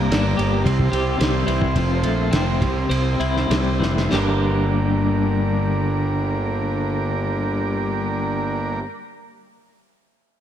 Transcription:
0.00 0.65 G2 medium
0.00 0.63 G3 medium
0.00 0.63 A#3 medium
0.00 0.65 A#3 medium
0.00 0.63 D4 medium
0.00 0.63 A#4 medium
0.11 0.36 G1 medium
0.11 0.65 D4 medium
0.11 snare medium
0.11 ride medium
0.37 0.64 G1 medium
0.37 0.64 G4 medium
0.37 ride soft
0.64 0.91 C2 medium
0.64 1.75 C3 medium
0.64 1.74 G3 medium
0.64 4.08 C4 medium
0.64 1.74 E4 medium
0.64 4.09 C5 medium
0.64 kick medium
0.64 ride medium
0.79 kick medium
0.92 1.18 C2 medium
0.92 1.75 G4 medium
0.92 ride medium
1.19 1.46 C2 medium
1.19 1.75 G3 medium
1.19 snare medium
1.19 ride medium
1.47 1.74 C2 medium
1.47 1.75 E3 medium
1.47 ride medium
1.62 kick medium
1.75 2.02 F1 medium
1.75 2.61 F2 medium
1.75 2.61 A3 medium
1.75 2.61 F4 medium
1.75 kick medium
1.75 ride medium
2.03 2.30 A#1 medium
2.03 2.61 A3 soft
2.03 ride soft
2.31 2.59 F1 medium
2.31 2.60 C4 medium
2.31 snare medium
2.31 ride medium
2.61 2.89 C2 medium
2.61 4.11 C3 medium
2.61 4.10 G3 soft
2.61 4.10 E4 soft
2.61 kick medium
2.61 ride soft
2.90 3.18 C2 medium
2.90 4.12 C4 medium
2.90 ride medium
3.20 3.48 C2 medium
3.20 4.12 E4 medium
3.20 ride soft
3.37 snare soft
3.50 3.79 C2 medium
3.50 4.11 G3 medium
3.50 snare medium
3.50 ride medium
3.80 4.10 F1 medium
3.80 4.11 E3 soft
3.80 snare soft
3.98 snare medium
4.10 8.81 G1 medium
4.10 8.82 G2 medium
4.10 8.83 D3 medium
4.10 8.79 G3 medium
4.10 8.84 G3 medium
4.10 8.80 A#3 medium
4.10 8.85 A#3 medium
4.10 8.80 D4 soft
4.10 8.85 D4 medium
4.10 8.86 G4 medium
4.10 8.81 A#4 medium
4.10 snare medium
4.10 crash medium

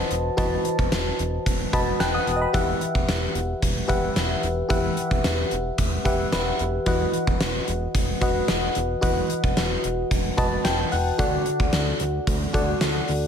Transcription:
0.00 0.37 E3 medium
0.00 0.37 F#4 medium
0.00 0.37 B4 medium
0.00 2.56 C5 medium
0.00 0.38 D#5 medium
0.00 2.15 F#5 medium
0.00 0.33 A5 medium
0.11 0.30 E1 medium
0.11 closed hi-hat medium
0.37 0.58 E1 loud
0.37 1.15 E3 medium
0.37 1.38 F#4 medium
0.37 1.39 B4 medium
0.37 1.39 D#5 medium
0.37 1.39 A5 medium
0.37 kick loud
0.37 closed hi-hat medium
0.65 closed hi-hat medium
0.79 0.88 E1 medium
0.79 kick medium
0.92 1.12 E1 loud
0.92 snare loud
0.92 closed hi-hat medium
1.19 1.39 E1 loud
1.19 closed hi-hat medium
1.46 1.66 E1 loud
1.46 kick medium
1.46 closed hi-hat medium
1.73 1.93 E1 loud
1.73 2.49 F#4 medium
1.73 2.49 B4 medium
1.73 2.00 D#5 medium
1.73 1.99 A5 medium
1.73 1.98 B5 medium
1.73 kick medium
1.73 closed hi-hat medium
2.00 2.20 E1 loud
2.00 2.17 G5 medium
2.00 2.13 A5 medium
2.00 2.13 F#6 medium
2.00 snare loud
2.00 closed hi-hat medium
2.14 2.18 F#5 medium
2.14 2.40 D#6 medium
2.19 2.35 F#5 medium
2.27 2.46 E1 medium
2.27 closed hi-hat medium
2.36 2.41 D#5 medium
2.42 2.67 D#5 medium
2.42 2.67 B5 medium
2.53 2.74 E1 medium
2.53 3.31 E3 medium
2.53 3.55 G4 medium
2.53 3.55 B4 medium
2.53 3.55 E5 medium
2.53 3.55 F#5 medium
2.53 kick loud
2.53 closed hi-hat medium
2.81 closed hi-hat medium
2.95 3.05 E1 medium
2.95 kick medium
3.08 3.28 E1 medium
3.08 snare loud
3.08 closed hi-hat medium
3.35 3.54 E1 loud
3.35 closed hi-hat medium
3.62 3.82 E1 medium
3.62 kick medium
3.62 closed hi-hat medium
3.88 4.09 E1 loud
3.88 4.64 G4 medium
3.88 4.65 B4 medium
3.88 4.65 E5 medium
3.88 4.65 F#5 medium
3.88 kick medium
3.88 closed hi-hat medium
4.16 4.36 E1 loud
4.16 snare loud
4.16 closed hi-hat medium
4.43 4.63 E1 medium
4.43 closed hi-hat medium
4.69 4.90 E1 loud
4.69 5.47 E3 medium
4.69 5.70 G4 medium
4.69 5.71 B4 medium
4.69 5.71 E5 medium
4.69 5.71 F#5 medium
4.69 kick loud
4.69 closed hi-hat medium
4.97 closed hi-hat medium
5.11 5.21 E1 loud
5.11 kick medium
5.24 5.44 E1 medium
5.24 snare loud
5.24 closed hi-hat medium
5.51 5.71 E1 medium
5.51 closed hi-hat medium
5.78 5.98 E1 medium
5.78 kick medium
5.78 closed hi-hat medium
6.05 6.25 E1 medium
6.05 6.81 G4 medium
6.05 6.32 B4 medium
6.05 6.81 E5 medium
6.05 6.81 F#5 medium
6.05 kick medium
6.05 closed hi-hat medium
6.32 6.52 E1 medium
6.32 6.83 B4 medium
6.32 snare loud
6.32 closed hi-hat medium
6.59 6.79 E1 medium
6.59 closed hi-hat medium
6.86 7.06 E1 loud
6.86 7.64 E3 medium
6.86 7.87 F#4 medium
6.86 7.87 B4 medium
6.86 7.88 D#5 medium
6.86 7.88 F#5 medium
6.86 kick medium
6.86 closed hi-hat medium
7.13 closed hi-hat medium
7.27 7.37 E1 loud
7.27 kick medium
7.41 7.60 E1 loud
7.41 snare loud
7.41 closed hi-hat medium
7.68 7.87 E1 loud
7.68 closed hi-hat medium
7.95 8.14 E1 loud
7.95 kick medium
7.95 closed hi-hat medium
8.21 8.41 E1 medium
8.21 8.97 F#4 medium
8.21 8.97 B4 medium
8.21 8.98 D#5 medium
8.21 8.98 F#5 medium
8.21 kick medium
8.21 closed hi-hat medium
8.48 8.69 E1 medium
8.48 snare loud
8.48 closed hi-hat medium
8.75 8.95 E1 medium
8.75 closed hi-hat medium
9.01 9.22 E1 loud
9.01 9.80 E3 medium
9.01 10.03 F#4 medium
9.01 10.03 B4 medium
9.01 10.03 D#5 medium
9.01 10.04 F#5 medium
9.01 kick loud
9.01 closed hi-hat medium
9.30 closed hi-hat medium
9.44 9.53 E1 loud
9.44 kick medium
9.57 9.77 E1 loud
9.57 snare loud
9.57 closed hi-hat medium
9.84 10.04 E1 medium
9.84 closed hi-hat medium
10.11 10.30 E1 loud
10.11 kick medium
10.11 closed hi-hat medium
10.37 10.57 E1 loud
10.37 11.13 F#4 medium
10.37 11.13 B4 medium
10.37 11.14 D#5 medium
10.37 11.14 A5 medium
10.37 kick medium
10.37 closed hi-hat medium
10.64 10.85 E1 loud
10.64 10.90 G5 medium
10.64 snare loud
10.64 closed hi-hat medium
10.92 11.12 E1 medium
10.92 11.17 F#5 medium
10.92 open hi-hat medium
11.18 11.38 D2 medium
11.18 11.96 D3 medium
11.18 12.20 F#4 medium
11.18 12.20 A4 medium
11.18 12.20 D5 medium
11.18 12.20 F#5 medium
11.18 kick loud
11.18 closed hi-hat medium
11.46 closed hi-hat medium
11.60 11.69 D2 medium
11.60 kick medium
11.73 11.93 D2 loud
11.73 snare loud
11.73 closed hi-hat medium
12.00 12.20 D2 loud
12.00 closed hi-hat medium
12.27 12.47 D2 loud
12.27 kick medium
12.27 closed hi-hat medium
12.53 12.74 D2 loud
12.53 13.27 F#4 medium
12.53 13.27 A4 medium
12.53 13.27 D5 medium
12.53 13.27 F#5 medium
12.53 kick medium
12.53 closed hi-hat medium
12.81 13.01 D2 loud
12.81 snare loud
12.81 closed hi-hat medium
13.08 13.27 D2 medium
13.08 open hi-hat medium

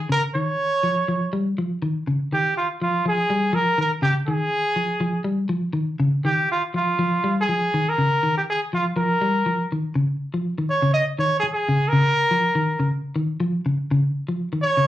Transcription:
0.09 0.29 C#3 loud
0.09 0.22 A#4 loud
0.35 0.55 D#3 medium
0.35 1.29 C#5 loud
0.83 1.03 F3 medium
1.08 1.28 F3 medium
1.33 1.53 G3 medium
1.58 1.78 F3 medium
1.82 2.02 D#3 medium
2.07 2.27 C#3 medium
2.33 2.52 D#3 medium
2.33 2.55 G4 medium
2.57 2.68 F4 medium
2.82 3.01 F3 medium
2.82 3.04 F4 medium
3.06 3.26 F3 medium
3.06 3.56 G#4 medium
3.30 3.50 G3 medium
3.53 3.74 F3 medium
3.53 3.79 A#4 loud
3.78 3.99 D#3 medium
3.78 3.91 A#4 medium
4.02 4.23 C#3 medium
4.02 4.14 G4 loud
4.27 4.48 D#3 medium
4.27 5.22 G#4 loud
4.76 4.97 F3 medium
5.00 5.21 F3 medium
5.24 5.46 G3 medium
5.49 5.70 F3 medium
5.73 5.95 D#3 medium
6.00 6.20 C#3 medium
6.25 6.45 D#3 medium
6.25 6.48 G4 medium
6.52 6.62 F4 medium
6.74 6.95 F3 medium
6.74 7.34 F4 medium
6.99 7.19 F3 loud
7.24 7.44 G3 medium
7.41 7.90 G#4 loud
7.49 7.69 F3 medium
7.74 7.94 D#3 medium
7.89 8.37 A#4 loud
7.98 8.19 C#3 medium
8.23 8.43 D#3 medium
8.37 8.42 G4 medium
8.50 8.60 G#4 medium
8.73 8.93 F3 medium
8.73 8.85 F4 medium
8.96 9.17 F3 medium
8.96 9.67 A#4 medium
9.21 9.42 G3 medium
9.46 9.66 F3 medium
9.72 9.92 D#3 medium
9.95 10.16 C#3 medium
10.34 10.54 F3 medium
10.58 10.78 D#3 medium
10.70 10.92 C#5 loud
10.82 11.03 C#3 medium
10.94 11.05 D#5 loud
11.19 11.39 D#3 medium
11.19 11.39 C#5 loud
11.40 11.46 G#4 loud
11.40 muted clean electric guitar stroke medium
11.53 11.90 G#4 medium
11.69 11.88 C#3 medium
11.88 12.88 A#4 loud
11.93 12.13 C#3 medium
12.31 12.51 F3 medium
12.55 12.75 D#3 medium
12.80 13.00 C#3 medium
13.16 13.36 D#3 medium
13.40 13.60 F3 medium
13.66 13.85 C#3 medium
13.91 14.10 C#3 loud
14.29 14.48 F3 medium
14.53 14.72 D#3 medium
14.62 14.87 C#5 loud
14.77 14.87 C#3 medium

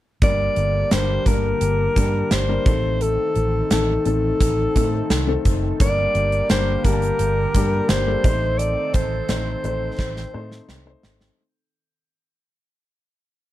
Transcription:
0.22 0.47 G1 medium
0.22 2.63 D3 medium
0.22 0.73 G3 medium
0.22 2.64 A#3 medium
0.22 0.73 A#3 medium
0.22 0.73 D4 medium
0.22 2.64 G4 medium
0.22 0.73 A#4 medium
0.22 0.95 D5 loud
0.22 kick loud
0.22 closed hi-hat medium
0.56 0.82 G1 medium
0.56 closed hi-hat medium
0.91 1.17 G1 medium
0.91 1.17 G3 medium
0.91 1.17 A#3 medium
0.91 1.17 D4 medium
0.91 1.18 A#4 medium
0.91 1.29 C5 medium
0.91 snare loud
0.91 closed hi-hat medium
1.26 1.51 G1 medium
1.26 1.77 G3 medium
1.26 1.77 A#3 medium
1.26 1.78 D4 medium
1.26 2.34 A#4 medium
1.26 1.78 A#4 medium
1.26 kick medium
1.26 closed hi-hat medium
1.61 1.86 G1 loud
1.61 closed hi-hat medium
1.96 2.21 G2 medium
1.96 2.34 G3 medium
1.96 2.35 A#3 medium
1.96 2.35 D4 medium
1.96 2.35 A#4 medium
1.96 kick medium
1.96 closed hi-hat medium
2.31 2.56 G1 medium
2.31 3.04 C5 medium
2.31 snare loud
2.31 closed hi-hat medium
2.49 2.66 G3 medium
2.49 2.66 A#3 medium
2.49 2.66 D4 medium
2.49 2.67 A#4 medium
2.66 3.16 A1 medium
2.66 3.50 D#3 medium
2.66 5.77 D#3 medium
2.66 3.50 A3 medium
2.66 3.50 C4 medium
2.66 5.77 C4 medium
2.66 5.77 A4 medium
2.66 3.50 A4 medium
2.66 kick loud
2.66 closed hi-hat medium
3.01 3.71 A4 medium
3.01 closed hi-hat medium
3.35 3.61 A1 medium
3.35 closed hi-hat medium
3.71 3.96 A1 medium
3.71 3.97 D#3 medium
3.71 3.97 A3 medium
3.71 3.97 C4 medium
3.71 4.04 A4 medium
3.71 3.97 A4 medium
3.71 snare loud
3.71 closed hi-hat medium
4.05 4.31 A1 medium
4.05 4.57 D#3 medium
4.05 4.57 A3 medium
4.05 4.57 C4 medium
4.05 5.42 A4 medium
4.05 4.57 A4 medium
4.05 closed hi-hat medium
4.41 4.66 A1 medium
4.41 kick medium
4.41 closed hi-hat medium
4.76 5.01 A2 medium
4.76 5.14 D#3 medium
4.76 5.14 A3 medium
4.76 5.14 C4 medium
4.76 5.14 A4 medium
4.76 kick medium
4.76 closed hi-hat medium
5.10 5.35 C2 medium
5.10 snare loud
5.10 closed hi-hat medium
5.27 5.66 D#3 medium
5.27 5.66 A3 medium
5.27 5.66 C4 medium
5.27 5.66 A4 medium
5.45 5.71 F#1 medium
5.45 kick medium
5.45 closed hi-hat medium
5.80 6.05 G1 medium
5.80 8.22 D3 medium
5.80 6.31 G3 medium
5.80 6.31 A#3 medium
5.80 8.22 A#3 medium
5.80 6.31 D4 medium
5.80 8.22 G4 medium
5.80 6.32 A#4 medium
5.80 6.46 D5 loud
5.80 kick loud
5.80 closed hi-hat medium
6.15 6.40 G1 medium
6.15 closed hi-hat medium
6.32 closed hi-hat soft
6.49 6.75 G1 loud
6.49 6.75 G3 medium
6.49 6.75 A#3 medium
6.49 6.76 D4 medium
6.49 6.76 A#4 medium
6.49 6.86 C5 medium
6.49 snare loud
6.49 closed hi-hat medium
6.84 7.10 G1 medium
6.84 7.35 G3 medium
6.84 7.36 A#3 medium
6.84 7.36 D4 medium
6.84 6.92 G4 medium
6.84 7.91 A#4 loud
6.84 kick medium
6.84 closed hi-hat medium
6.92 7.39 A5 medium
7.02 closed hi-hat medium
7.19 7.45 G1 loud
7.19 closed hi-hat loud
7.54 7.80 G2 medium
7.54 7.93 G3 medium
7.54 7.93 A#3 medium
7.54 7.93 D4 medium
7.54 7.93 G4 medium
7.54 kick medium
7.54 closed hi-hat medium
7.89 8.15 G1 medium
7.89 8.60 C5 medium
7.89 snare loud
7.89 closed hi-hat medium
8.06 8.24 G3 medium
8.06 8.24 A#3 medium
8.06 8.24 D4 medium
8.06 8.25 A4 medium
8.24 8.75 A1 medium
8.24 11.35 D#3 medium
8.24 9.08 A3 medium
8.24 9.08 C4 medium
8.24 11.36 C4 medium
8.24 9.08 D#4 medium
8.24 11.36 A4 medium
8.24 9.08 C5 medium
8.24 kick loud
8.24 closed hi-hat medium
8.59 8.96 D5 medium
8.59 closed hi-hat medium
8.94 9.19 A1 medium
8.94 11.03 C5 medium
8.94 kick medium
8.94 closed hi-hat medium
9.28 9.54 A1 medium
9.28 9.54 A3 medium
9.28 9.54 C4 medium
9.28 9.55 D#4 medium
9.28 9.55 C5 medium
9.28 snare loud
9.28 closed hi-hat medium
9.64 9.89 A1 medium
9.64 10.15 A3 medium
9.64 10.15 C4 medium
9.64 10.15 D#4 medium
9.64 10.15 C5 medium
9.64 closed hi-hat medium
9.99 10.24 A1 loud
9.99 kick medium
9.99 snare medium
10.17 snare soft
10.33 10.59 A2 medium
10.33 10.72 A3 medium
10.33 10.72 C4 medium
10.33 10.72 D#4 medium
10.33 10.72 C5 medium
10.52 snare medium
10.69 10.94 C2 medium
10.69 snare medium
10.86 11.24 A3 medium
10.86 11.24 C4 medium
10.86 11.25 D#4 medium
10.86 11.25 C5 medium
11.03 11.29 G#1 medium
11.03 snare medium
11.21 snare medium

